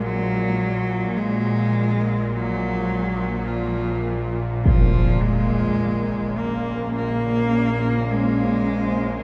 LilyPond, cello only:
\new Staff \with { instrumentName = "Cello" } { \clef bass \time 4/4 \key bes \minor \tempo 4 = 52 ges4 aes4 ges4 f8. r16 | f8 aes4 bes8 bes4 aes4 | }